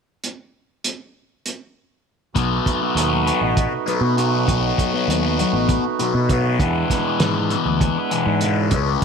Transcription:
0.24 closed hi-hat
0.84 closed hi-hat
1.46 closed hi-hat
2.35 fingered electric bass B1, distorted electric guitar B2 F#3 B3, harmonium A3 D#4 F#4 B4, kick, closed hi-hat
2.66 kick, closed hi-hat
2.82 distorted electric guitar F#3 B3
2.95 fingered electric bass D#2, distorted electric guitar B2 F#3 B3, closed hi-hat
3.10 distorted electric guitar F#3 B3
3.27 distorted electric guitar B2 F#3 B3, closed hi-hat
3.41 fingered electric bass A1, muted distorted electric guitar stroke
3.57 kick, closed hi-hat
3.86 distorted electric guitar B2 F#3 B3, closed hi-hat
4.01 fingered electric bass B2, muted distorted electric guitar stroke
4.17 distorted electric guitar B2 F#3 B3, closed hi-hat
4.47 fingered electric bass B1, distorted electric guitar B2 F#3 B3, kick, closed hi-hat
4.78 kick, closed hi-hat
4.93 distorted electric guitar F#3 B3
5.08 fingered electric bass D#2, distorted electric guitar B2 F#3 B3, closed hi-hat
5.23 distorted electric guitar F#3 B3
5.38 distorted electric guitar B2 F#3 B3, closed hi-hat
5.53 fingered electric bass A1, muted distorted electric guitar stroke
5.69 kick, closed hi-hat
5.99 distorted electric guitar B2 F#3 B3, closed hi-hat
6.14 fingered electric bass B2, muted distorted electric guitar stroke
6.29 distorted electric guitar B2 F#3 B3, kick, closed hi-hat
6.59 fingered electric bass E2, distorted electric guitar E2 B2 E3, harmonium G#3 D4 E4, kick, closed hi-hat
6.90 kick, snare, closed hi-hat
7.06 distorted electric guitar B2 E3
7.20 distorted electric guitar E2 B2 E3, fingered electric bass G#2, snare, closed hi-hat
7.36 distorted electric guitar B2 E3
7.50 distorted electric guitar E2 B2 E3, closed hi-hat
7.65 fingered electric bass D2, muted distorted electric guitar stroke
7.81 kick, closed hi-hat
8.11 distorted electric guitar E2 B2 E3, closed hi-hat
8.26 fingered electric bass G#2, muted distorted electric guitar stroke
8.41 distorted electric guitar E2 B2 E3, closed hi-hat
8.71 fingered electric bass C#2, distorted electric guitar C#3 G#3, harmonium C#4, kick, closed hi-hat
8.75 distorted electric guitar C#4

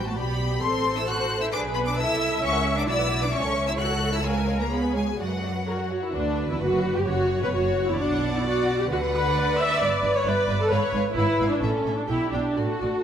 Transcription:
Already playing: double bass section A1, viola section F#4, violin section F#4 C5
0.06 cello section A3, violin section A5
0.16 double bass section B1, cello section B3, viola section G4, violin section G4 D5 B5
0.61 double bass section A1, cello section C4, viola section A4, violin section A4 C5 C6
0.96 cello section E4, violin section E6
1.06 cello section F#4, viola section C5, violin section F#6
1.40 cello section E4, violin section E6
1.52 double bass section B1, cello section D4, violin section G#4 B4 D6, viola section B4
1.75 cello section B3, violin section B5
1.85 cello section D4, violin section D6
1.97 double bass section C2, cello section E4, violin section A4 E5 E6, viola section E5
2.42 double bass section C#2, cello section C#4, violin section C#5 E5 C#6
2.52 violin section A#4 F#5
2.65 violin section C#5 E5
2.76 cello section D4, violin section A#4 F#5 D6
2.86 double bass section B1, cello section E4, violin section F#4 D5 E6, viola section D5
2.96 violin section B4 F#5
3.08 violin section F#4 D5
3.20 cello section D4, violin section B4 F#5 D6
3.31 double bass section C#2, cello section C#4, violin section C#5 E5 C#6, viola section C#5
3.42 violin section A4 C#5
3.53 violin section C#5 E5
3.65 cello section E4, violin section A4 C#5 E6
3.77 cello section F#4, viola section A4, violin section C#5 E5 F#6
3.88 violin section A4 C#5
3.98 violin section C#5 E5
4.10 cello section E4, violin section A4 C#5 E6
4.22 cello section G#3, viola section A#4, violin section C#5 F5 G#5
4.34 violin section B4 G#5
4.46 violin section C#5 F5
4.57 cello section A#3, violin section B4 G#5 A#5
4.69 cello section B3, viola section G#4, violin section C#5 F5 B5
4.82 violin section B4 G#5
4.93 cello section G#3, violin section C#5 F5 G#5
5.06 violin section B4 G#5
5.18 double bass section F#2, cello section F#3, violin section F#4 D5 F#5, viola section F#4
5.30 violin section B4 F#5
5.41 violin section F#4 D5
5.53 violin section B4 F#5
5.66 violin section F#4 C#5, viola section F#4 A#4
5.78 violin section A#4 F#5
5.89 violin section F#4 C#5, viola section F#4
6.01 viola section E4, violin section A#4 F#5
6.14 cello section D2, double bass section D2, violin section D4 B4, viola section D4
6.49 cello section E2, viola section E4, violin section E4
6.60 double bass section F#1, cello section F#2, violin section F#4, viola section F#4
6.95 cello section G2, viola section G4, violin section G4
7.06 double bass section F#1, cello section F#2, violin section F#4 C#5, viola section F#4
7.41 cello section B2, violin section B4, viola section B4
7.52 double bass section F#1, cello section F#2, violin section F#4, viola section F#4
7.87 cello section E2, violin section E4, viola section E4
7.98 double bass section B1, cello section B2, viola section D4, violin section D5 F#5
8.34 viola section E4
8.45 viola section F#4, violin section F#5
8.80 viola section G4
8.90 double bass section D2, cello section D3, viola section F#4, violin section B4 F#5
9.14 viola section B4
9.35 violin section D5
9.59 viola section E5
9.80 double bass section G1, cello section G2, violin section B4 E5, viola section D5
10.03 double bass section G1, cello section G2, violin section E5
10.15 viola section C#5
10.24 double bass section G1, cello section G2, viola section B4, violin section D5 E5
10.47 double bass section G1, cello section G2, violin section E5
10.61 viola section A4
10.70 double bass section G#1, cello section G#2, viola section B4, violin section C#5 F5
10.93 double bass section G#1, cello section G#2, violin section F5
11.15 double bass section G#1, cello section G#2, viola section E4, violin section B4 F5
11.38 double bass section G#1, cello section G#2, violin section F5
11.50 viola section D4
11.61 double bass section A1, cello section A2, viola section C#4, violin section A4 E5
11.84 double bass section A1, cello section A2, violin section E5
11.96 viola section D4
12.08 double bass section B1, cello section B2, viola section E4, violin section G4 G5
12.31 double bass section B1, cello section B2, viola section D4, violin section G5
12.56 double bass section A1, cello section A2, viola section F#4, violin section A4 D5
12.81 double bass section A1, cello section A2, violin section D5

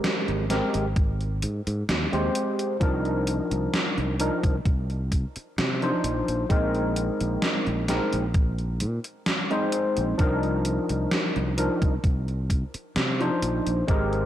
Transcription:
Already playing: tine electric piano G#3 C4 G4 A#4
0.04 snare, closed hi-hat
0.28 fretless electric bass G#1, closed hi-hat
0.50 tine electric piano G#3 C4 G4 A#4, snare, closed hi-hat
0.74 fretless electric bass G#1, closed hi-hat
0.96 kick, closed hi-hat
1.21 closed hi-hat
1.42 fretless electric bass G#2, closed hi-hat
1.67 fretless electric bass G#2, closed hi-hat
1.89 fretless electric bass D#2, snare, closed hi-hat
2.12 fretless electric bass D#2, tine electric piano G#3 C4 G4 C5, closed hi-hat
2.35 closed hi-hat
2.59 closed hi-hat
2.80 fretless electric bass C2, tine electric piano F3 D4 D#4 A#4, kick, closed hi-hat
3.05 closed hi-hat
3.27 closed hi-hat
3.51 fretless electric bass C2, closed hi-hat
3.74 snare, closed hi-hat
3.98 fretless electric bass C2, closed hi-hat
4.19 tine electric piano F3 D4 D#4 A#4, closed hi-hat
4.44 fretless electric bass C2, kick, closed hi-hat
4.65 fretless electric bass C2, kick, closed hi-hat
4.90 closed hi-hat
5.12 kick, closed hi-hat
5.36 muted fretless electric bass stroke, closed hi-hat
5.58 fretless electric bass C3, snare, closed hi-hat
5.82 tine electric piano F3 D4 D#4 C5, closed hi-hat
6.04 fretless electric bass A#1, closed hi-hat
6.28 fretless electric bass A#1, closed hi-hat
6.49 fretless electric bass A#1, tine electric piano G#3 C4 D#4 A#4, kick, closed hi-hat
6.75 closed hi-hat
6.96 closed hi-hat
7.21 fretless electric bass A#1, closed hi-hat
7.42 snare, closed hi-hat
7.67 fretless electric bass A#1, closed hi-hat
7.88 tine electric piano G#3 C4 D#4 A#4, snare, closed hi-hat
8.13 fretless electric bass A#1, closed hi-hat
8.34 kick, closed hi-hat
8.58 closed hi-hat
8.80 fretless electric bass A#2, closed hi-hat
9.04 closed hi-hat
9.26 snare, closed hi-hat
9.51 tine electric piano G#3 C4 D#4 C5, closed hi-hat
9.72 closed hi-hat
9.97 fretless electric bass A#1, closed hi-hat
10.17 fretless electric bass C2, tine electric piano F3 D4 D#4 A#4, kick, closed hi-hat
10.43 closed hi-hat
10.65 closed hi-hat
10.89 fretless electric bass C2, closed hi-hat
11.11 snare, closed hi-hat
11.36 fretless electric bass C2, closed hi-hat
11.57 tine electric piano F3 D4 D#4 A#4, closed hi-hat
11.82 fretless electric bass C2, kick, closed hi-hat
12.04 fretless electric bass C2, kick, closed hi-hat
12.28 closed hi-hat
12.50 kick, closed hi-hat
12.74 muted fretless electric bass stroke, closed hi-hat
12.96 fretless electric bass C3, snare, closed hi-hat
13.20 tine electric piano F3 D4 D#4 C5, closed hi-hat
13.43 fretless electric bass A#1, closed hi-hat
13.67 fretless electric bass A#1, closed hi-hat
13.87 fretless electric bass G#1, tine electric piano G#3 C4 G4 A#4, kick, closed hi-hat
14.13 closed hi-hat

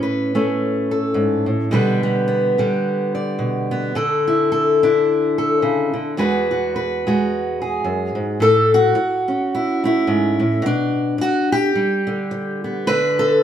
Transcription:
Already playing: steel-string acoustic guitar A2 C#4
0.03 steel-string acoustic guitar B4
0.35 steel-string acoustic guitar A3 C#4
0.91 steel-string acoustic guitar A4
1.14 steel-string acoustic guitar G#2
1.46 steel-string acoustic guitar A2
1.71 steel-string acoustic guitar B2 D3 G3 B3 B4
2.03 steel-string acoustic guitar G3
2.28 steel-string acoustic guitar B3
2.58 steel-string acoustic guitar D3 G3
3.15 steel-string acoustic guitar D5
3.39 steel-string acoustic guitar B2
3.71 steel-string acoustic guitar B3
3.95 steel-string acoustic guitar D3 A4
4.27 steel-string acoustic guitar E4
4.52 steel-string acoustic guitar A4
4.83 steel-string acoustic guitar D4 E4
5.38 steel-string acoustic guitar A4
5.62 steel-string acoustic guitar C#3
5.94 steel-string acoustic guitar D3
6.17 steel-string acoustic guitar E2 G#3 F#4 B4
6.51 steel-string acoustic guitar F#4
6.76 steel-string acoustic guitar B4
7.07 steel-string acoustic guitar G#3 F#4
7.62 steel-string acoustic guitar G#4
7.84 steel-string acoustic guitar F#2
8.15 steel-string acoustic guitar G#2
8.40 steel-string acoustic guitar A2 A4
8.74 steel-string acoustic guitar F#4
8.95 muted steel-string acoustic guitar stroke
9.28 steel-string acoustic guitar C#4
9.55 steel-string acoustic guitar E4
9.84 steel-string acoustic guitar A3 E4
10.07 steel-string acoustic guitar G#2
10.40 steel-string acoustic guitar A2
10.62 steel-string acoustic guitar B2 D4
11.18 steel-string acoustic guitar F#4, muted steel-string acoustic guitar stroke
11.52 steel-string acoustic guitar G4
11.75 steel-string acoustic guitar G3
12.07 steel-string acoustic guitar D3
12.31 muted steel-string acoustic guitar stroke
12.64 steel-string acoustic guitar B3
12.87 steel-string acoustic guitar D3 D4 B4
13.19 steel-string acoustic guitar A4

